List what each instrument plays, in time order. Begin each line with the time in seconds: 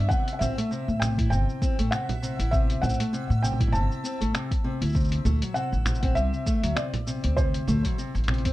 Already playing: synth texture E5 E6
0.09 steel-string acoustic guitar C3, felt piano F#5, kick, cabasa
0.28 closed hi-hat, cabasa
0.33 felt piano F#5
0.39 upright bass A1, steel-string acoustic guitar C4, felt piano E5, low conga, cabasa
0.58 steel-string acoustic guitar A3, closed hi-hat, cabasa
0.71 steel-string acoustic guitar C3, cabasa
0.88 upright bass A2, cabasa
1.00 steel-string acoustic guitar C3, felt piano G5, finger snap, low conga, cabasa
1.18 steel-string acoustic guitar E4, kick, closed hi-hat, cabasa
1.30 upright bass G1, steel-string acoustic guitar C3, felt piano G5, cabasa
1.49 cabasa
1.62 steel-string acoustic guitar C4, kick, cabasa
1.79 upright bass A1, steel-string acoustic guitar A3, closed hi-hat, cabasa
1.91 steel-string acoustic guitar C3, felt piano F#5, finger snap, cabasa
2.09 closed hi-hat, low conga, cabasa
2.22 steel-string acoustic guitar C3, cabasa
2.39 upright bass A1, steel-string acoustic guitar E4, closed hi-hat, cabasa
2.51 steel-string acoustic guitar C3, felt piano E5, kick, cabasa
2.70 closed hi-hat, cabasa
2.82 upright bass A1, steel-string acoustic guitar C4, felt piano F#5, low conga, cabasa
2.89 cabasa
2.94 cabasa
3.00 steel-string acoustic guitar A3, closed hi-hat, cabasa
3.13 steel-string acoustic guitar C3, cabasa
3.30 upright bass A2, cabasa
3.42 steel-string acoustic guitar C3, felt piano G5, low conga, cabasa
3.52 low conga
3.60 steel-string acoustic guitar E4, kick, closed hi-hat, low conga, cabasa
3.67 low conga
3.72 upright bass G1, steel-string acoustic guitar C3, felt piano A5, cabasa
3.92 cabasa
4.04 steel-string acoustic guitar C4, cabasa
4.21 upright bass A1, steel-string acoustic guitar A3, closed hi-hat, cabasa
4.34 steel-string acoustic guitar C3, finger snap, cabasa
4.51 kick, closed hi-hat, cabasa
4.64 steel-string acoustic guitar C3
4.81 upright bass D2, steel-string acoustic guitar E4, closed hi-hat, cabasa
4.85 cabasa
4.89 cabasa
4.92 steel-string acoustic guitar C3, kick, cabasa
4.95 cabasa
5.00 cabasa
5.04 cabasa
5.08 closed hi-hat, cabasa
5.12 cabasa
5.25 upright bass D2, steel-string acoustic guitar A3, low conga, cabasa
5.42 steel-string acoustic guitar F#3, closed hi-hat, cabasa
5.54 steel-string acoustic guitar C3, felt piano F#5, cabasa
5.72 upright bass A1, cabasa
5.86 steel-string acoustic guitar C3, finger snap, low conga, cabasa
5.95 cabasa
6.03 steel-string acoustic guitar C4, kick, closed hi-hat
6.15 upright bass C2, steel-string acoustic guitar C3, felt piano E5, cabasa
6.33 cabasa
6.46 steel-string acoustic guitar A3, kick, cabasa
6.63 upright bass D2, steel-string acoustic guitar F#3, closed hi-hat, cabasa
6.76 steel-string acoustic guitar C3, felt piano D5, finger snap, cabasa
6.94 closed hi-hat, low conga, cabasa
7.07 steel-string acoustic guitar C3, cabasa
7.24 upright bass D2, steel-string acoustic guitar C4, closed hi-hat
7.37 steel-string acoustic guitar C3, felt piano C5, kick, cabasa
7.54 closed hi-hat, cabasa
7.68 upright bass D2, steel-string acoustic guitar A3, low conga, cabasa
7.85 steel-string acoustic guitar F#3, kick, closed hi-hat, cabasa
7.98 steel-string acoustic guitar C3, cabasa
8.15 upright bass A1, closed hi-hat, cabasa
8.18 closed hi-hat
8.24 closed hi-hat
8.28 steel-string acoustic guitar C3, finger snap, closed hi-hat, low conga
8.34 closed hi-hat
8.38 closed hi-hat
8.45 steel-string acoustic guitar C4, kick, closed hi-hat, cabasa